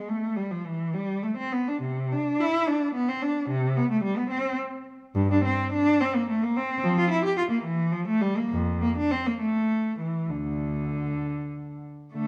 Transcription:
cello
0.08 A3
0.36 G3
0.51 F3
0.66 E3
0.94 G3
1.23 A3
1.37 C4
1.52 B3
1.68 D4
1.82 C3
2.12 D4
2.40 E4
2.67 D4
2.94 B3
3.08 C4
3.22 D4
3.50 C3
3.76 B3
3.90 A3
4.03 G3
4.17 B3
4.30 C4
5.15 G2
5.31 D4
5.44 C4
5.73 D4
6.01 C4
6.15 A#3
6.29 A3
6.43 A#3
6.57 C4
6.84 F3
6.98 F4
7.10 E4
7.25 G4
7.38 F4
7.51 A#3
7.65 E3
7.92 F3
8.08 A3
8.21 G3
8.37 A#3
8.52 F2
8.82 A#3
8.97 D4
9.11 C4
9.26 A#3
9.41 A3
9.99 E3
10.29 D2 D3
12.14 D3 A3

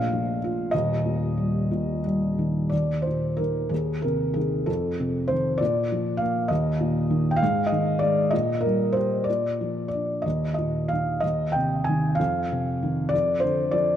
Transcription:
felt piano
Already playing: A#1 A#2 F5
0.12 F3
0.44 F4
0.71 D#1 D#2 D#5
1.06 A#2
1.38 G3
1.71 A#2
2.06 G3
2.39 D#3
2.69 D#2 D5
3.02 C5
3.07 A#2
3.37 D#3 A#4
3.69 D#2 G#4
4.02 C3 A#4
4.34 D#3 G#4
4.66 F2 A4
5.00 C3
5.28 D#3 C5
5.58 A#2 D5
5.92 F3
6.17 F5
6.22 A#3
6.48 D#2 D#5
6.81 A#2
7.10 D#3
7.31 G5
7.36 F5
7.42 G#2
7.67 D#5
7.72 D#3
7.99 G#3 D5
8.31 A#2 D#5
8.61 A#4
8.66 G3
8.92 C5
8.97 G4
9.24 D5
9.30 A#2
9.61 F3
9.88 D5
9.93 D4
10.22 D#2 D#5
10.54 D#5
10.58 A#2
10.88 F5
10.93 D#3
11.20 D#2 D#5
11.52 C3 G5
11.84 G#5
11.89 D#3
12.15 F5
12.19 F2
12.52 C3
12.83 D#3
13.09 D5
13.13 F2
13.40 D3 C5
13.71 F3 D5

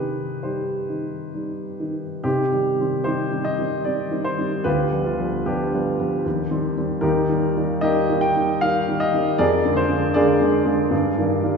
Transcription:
grand piano
Already playing: C3 D#3 D#4 G4 B4
0.43 G3 D#4 G4 C5
0.90 D#3 D#4
1.34 G3 D#4
1.80 D#3 D#4
2.24 C3 C4 D#4 G4
2.52 D#3 G3 C4
2.79 D#3 G3 C4
3.04 D#3 G3 C4 D#4 G4 C5
3.31 D#3 G3 C4
3.44 D#5
3.58 D#3 G3 C4
3.84 D#3 G3 C4 D5
4.11 D#3 G3 C4
4.24 C5
4.38 D#3 G3 C4
4.64 D2 F4 G4 B4
4.92 F3 G3 B3
5.05 F4
5.19 F3 G3 B3
5.46 F3 G3 B3 D4 G4
5.74 F3 G3 B3
5.99 F3 G3 B3
6.26 D#2
6.51 D#3 G3 C4
6.77 D#3 G3 C4
7.01 D#2 D#4 G4 A#4
7.29 D#3 G3 A#3
7.57 D#3 G3 A#3
7.81 D#3 G3 A#3 G4 A#4 D#5
8.09 D#3 G3 A#3
8.21 G5
8.37 D#3 G3 A#3
8.61 D#3 G3 A#3 F5
8.88 D#3 G3 A#3
9.00 D#5
9.14 D#3 G3 A#3
9.38 F2 G#4 A#4 D5
9.65 D3 G#3 A#3
9.77 C5
9.90 D3 G#3 A#3
10.14 D3 G#3 A#3 G#4 A#4 D5
10.40 D3 G#3 A#3
10.66 D3 G#3 A#3
10.91 G2
11.18 D#3 G3 A#3
11.43 D#3 G3 A#3

